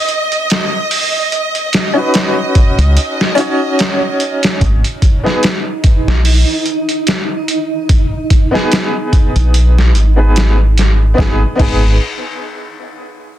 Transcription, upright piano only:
1.94 3.32 C#4 medium
1.94 3.32 D#4 medium
1.94 3.33 F#4 medium
1.98 3.34 B4 loud
3.35 4.57 C#4 loud
3.35 4.58 D#4 loud
3.35 4.59 F#4 medium
3.40 4.59 C#5 loud
5.23 5.45 B3 medium
5.23 5.46 D#4 medium
5.23 5.46 G#4 medium
5.23 5.47 B4 medium
8.51 9.89 B3 medium
8.51 9.90 D#4 medium
8.51 9.91 G#4 medium
8.56 9.91 B4 medium
10.16 10.54 B3 medium
10.16 10.55 D#4 medium
10.16 10.55 G#4 medium
10.16 10.55 B4 medium
11.14 11.41 B3 medium
11.14 11.42 D#4 medium
11.19 11.43 G#4 medium
11.19 11.45 B4 medium
11.55 11.88 B3 medium
11.55 11.90 D#4 medium
11.61 11.91 G#4 medium
11.61 11.92 B4 medium

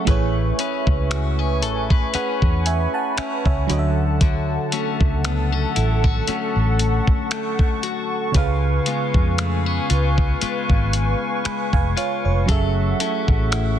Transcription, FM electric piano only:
0.05 3.64 A3 medium
0.05 3.65 E4 medium
0.05 3.65 G#4 medium
0.05 3.66 B4 medium
0.10 2.12 C#5 medium
2.14 2.63 F#5 medium
2.66 2.93 E5 medium
2.66 2.93 G#5 medium
2.94 3.17 F#5 medium
2.94 3.16 A5 medium
3.18 3.45 E5 medium
3.18 3.44 G#5 medium
3.46 3.70 C#5 medium
3.46 3.78 E5 medium
3.67 7.78 F#3 medium
3.67 7.79 D4 medium
3.67 7.79 F#4 medium
3.71 7.80 C#5 medium
3.71 3.78 D#5 medium
3.79 7.84 E5 medium
8.32 12.43 C#3 medium
8.32 12.44 C#4 medium
8.32 12.45 G#4 medium
8.36 12.45 B4 medium
8.36 11.42 F5 medium
11.46 11.72 G#5 medium
11.46 11.72 B5 medium
11.73 11.96 F5 medium
11.73 11.96 G#5 medium
11.97 12.24 C#5 medium
11.97 12.23 F5 medium
12.25 12.74 C#5 medium
12.46 13.79 F#3 medium
12.46 13.79 C#4 medium
12.46 13.79 G#4 medium
12.50 13.79 A4 medium
12.50 13.79 E5 medium

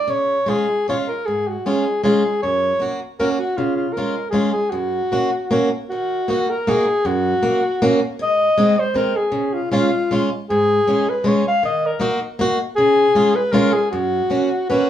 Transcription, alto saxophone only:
0.00 0.11 D5 medium
0.10 0.51 C#5 medium
0.49 0.87 G#4 medium
0.89 0.98 C#5 medium
1.08 1.27 A#4 medium
1.26 1.49 G#4 medium
1.48 1.68 F#4 medium
1.66 2.03 G#4 medium
2.03 2.40 G#4 medium
2.42 2.90 C#5 medium
3.20 3.29 A#4 medium
3.39 3.58 F#4 medium
3.57 3.76 F4 medium
3.76 3.94 F4 medium
3.93 4.30 A#4 medium
4.30 4.50 G#4 medium
4.52 4.72 G#4 medium
4.70 5.69 F#4 medium
5.89 6.51 F#4 medium
6.50 6.70 A#4 medium
6.69 7.08 G#4 medium
7.06 8.01 F#4 medium
8.22 8.81 D#5 loud
8.79 8.98 C5 medium
8.97 9.18 A#4 medium
9.16 9.55 G#4 medium
9.53 9.70 F4 medium
9.71 10.26 F4 medium
10.50 11.11 G#4 medium
11.09 11.29 B4 medium
11.28 11.47 C#5 medium
11.48 11.63 F5 medium
11.65 11.88 D#5 medium
11.86 12.23 A#4 medium
12.76 13.37 G#4 loud
13.35 13.53 B4 medium
13.52 13.74 A#4 medium
13.72 13.90 G#4 medium
13.91 14.65 F#4 medium
14.69 14.90 B4 medium

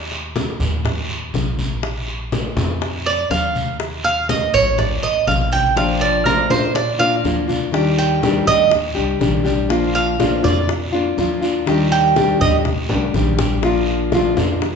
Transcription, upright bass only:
0.00 0.54 D#2 loud
0.60 1.30 D#2 loud
1.34 2.51 A#1 medium
2.56 3.27 F2 loud
3.30 4.47 D#2 loud
4.54 5.00 A#1 medium
5.03 5.26 A1 medium
5.27 6.44 A#1 medium
6.50 7.20 A#2 medium
7.24 8.41 D#2 loud
8.47 8.93 D#2 medium
8.97 9.20 C2 medium
9.21 10.38 A#1 loud
10.44 11.14 F2 loud
11.18 12.34 D#2 medium
12.40 12.86 D#2 loud
12.90 13.13 C2 medium
13.14 14.31 A#1 medium
14.37 14.76 F2 medium

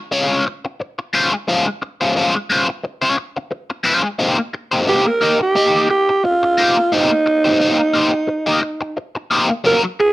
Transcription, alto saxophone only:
4.89 5.09 G4 loud
5.08 5.41 A#4 loud
5.42 5.87 G4 loud
5.90 6.26 G4 medium
6.24 6.95 F4 loud
6.93 8.97 D#4 loud
9.67 9.81 A#4 loud
10.00 10.13 G#4 loud

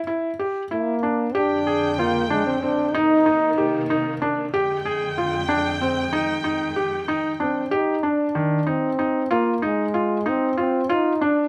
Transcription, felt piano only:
0.07 0.30 E4 medium
0.39 0.62 G4 medium
0.71 0.94 E4 medium
1.03 1.26 D4 medium
1.35 1.57 G4 medium
1.67 1.89 G#4 medium
1.99 2.22 F4 medium
2.30 2.53 D4 medium
2.63 2.85 C4 medium
2.94 3.17 D#4 medium
3.26 3.49 D#4 medium
3.58 3.80 G4 medium
3.90 4.13 D#4 medium
4.22 4.44 D4 medium
4.54 4.76 G4 medium
4.85 5.08 G#4 medium
5.18 5.40 F4 medium
5.49 5.71 D4 medium
5.81 6.04 C4 medium
6.13 6.35 D#4 medium
6.44 6.67 D#4 medium
6.76 6.99 G4 medium
7.08 7.31 D#4 medium
7.40 7.62 D4 medium
7.71 7.94 G4 medium
8.03 8.26 D4 medium
8.35 8.58 D#3 medium
8.67 8.89 D#4 medium
8.99 9.21 D#4 medium
9.31 9.53 F4 medium
9.62 9.85 D#4 medium
9.94 10.17 F4 medium
10.26 10.48 D#4 medium
10.57 10.80 F4 medium
10.89 11.12 F4 medium
11.21 11.44 D4 medium

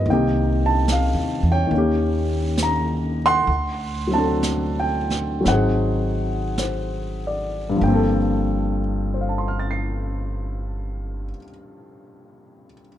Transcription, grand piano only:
0.00 0.24 B4 soft
0.08 1.74 C3 soft
0.08 1.66 D#3 soft
0.08 1.69 A#3 soft
0.08 1.69 D#5 soft
0.08 0.66 G5 medium
0.13 1.74 G4 soft
0.66 0.88 A5 medium
0.92 1.43 F5 medium
1.52 3.18 C#5 medium
1.52 2.64 G5 medium
1.67 3.45 D#3 soft
1.67 3.47 A#3 soft
1.74 3.49 C#4 soft
1.74 3.51 G4 medium
2.63 3.23 A#5 medium
3.26 5.12 F#5 medium
3.26 4.09 C6 loud
4.07 5.39 F#3 soft
4.07 5.43 C4 soft
4.14 5.46 D4 soft
4.14 4.73 A5 medium
4.19 5.48 A4 medium
4.80 5.43 G5 medium
5.41 7.79 F#3 medium
5.41 7.81 C4 soft
5.47 7.82 D#4 soft
5.47 6.58 C5 soft
5.47 6.54 F#5 medium
5.51 7.84 G#4 medium
6.59 7.58 C5 soft
7.27 8.16 D5 soft
7.69 11.24 G2 medium
7.76 11.30 F3 medium
7.82 11.36 A#3 medium
7.82 11.34 G5 medium
7.88 11.42 C4 medium
7.94 11.48 A4 medium
9.14 12.64 C5 soft
9.21 12.71 F5 soft
9.29 12.79 A5 soft
9.38 12.88 C6 soft
9.48 12.98 F6 soft
9.59 12.98 A6 soft
9.71 12.98 C7 soft

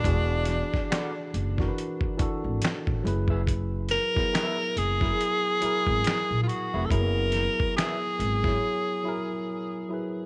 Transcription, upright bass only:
0.05 0.60 E1 loud
1.34 1.68 F#1 medium
2.20 muted upright bass stroke soft
2.44 2.58 G#1 medium
2.62 muted upright bass stroke medium
2.88 3.02 A1 medium
3.05 3.95 F#1 loud
4.76 5.11 F#1 medium
5.62 muted upright bass stroke soft
5.87 6.01 G#1 loud
6.06 muted upright bass stroke soft
6.31 6.45 A#1 medium
6.74 6.88 F1 medium
6.91 7.46 F#1 loud
8.19 8.54 G#1 loud

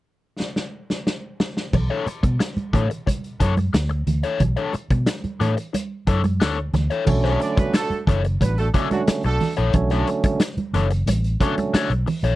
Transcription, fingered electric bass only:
1.73 1.88 B1 medium
2.06 muted fingered electric bass stroke soft
2.23 2.37 B2 medium
2.57 muted fingered electric bass stroke soft
2.73 2.88 A2 medium
3.40 3.69 F#2 medium
3.74 4.02 D2 medium
4.07 4.21 D2 medium
4.40 4.55 B1 medium
4.74 muted fingered electric bass stroke soft
4.90 5.05 B2 medium
5.24 muted fingered electric bass stroke soft
5.41 5.55 A2 medium
6.07 6.41 F#2 medium
6.41 6.69 D2 medium
6.74 6.88 D2 medium
7.07 7.36 B1 loud
7.58 muted fingered electric bass stroke soft
7.90 muted fingered electric bass stroke soft
8.07 8.36 F#1 loud
8.40 8.69 A1 medium
9.08 muted fingered electric bass stroke soft
9.24 9.38 B1 medium
9.58 9.72 A#1 medium
9.74 10.02 B1 medium
10.23 muted fingered electric bass stroke soft
10.57 muted fingered electric bass stroke soft
10.73 11.02 F#1 loud
11.06 11.35 A1 medium
11.73 muted fingered electric bass stroke soft
11.90 12.04 B1 medium
12.23 12.36 A#1 medium

